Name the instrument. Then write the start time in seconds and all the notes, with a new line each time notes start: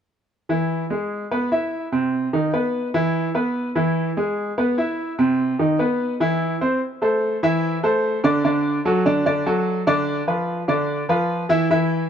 grand piano
0.49 E3 E4
0.90 G#3 G#4
1.31 B3 B4
1.52 E4 E5
1.92 C3 C4
2.33 D#3 D#4
2.53 B3 B4
2.94 E3 E4
3.35 B3 B4
3.75 E3 E4
4.17 G#3 G#4
4.58 B3 B4
4.78 E4 E5
5.19 C3 C4
5.59 D#3 D#4
5.79 B3 B4
6.20 E3 E4
6.61 C4 C5
7.02 A3 A4 C5
7.43 E3 E4 E5
7.83 A3 A4 C5
8.24 D3 D4 D5
8.44 D3 D4 D5
8.85 F#3 F#4 A4
9.05 D3 D4 D5
9.26 D3 D4 D5
9.46 F#3 F#4 A4
9.87 D3 D4 D5
10.27 F3 F4 B4
10.68 D3 D4 D5
11.09 F3 F4 B4
11.49 E3 E4 E5
11.70 E3 E4 E5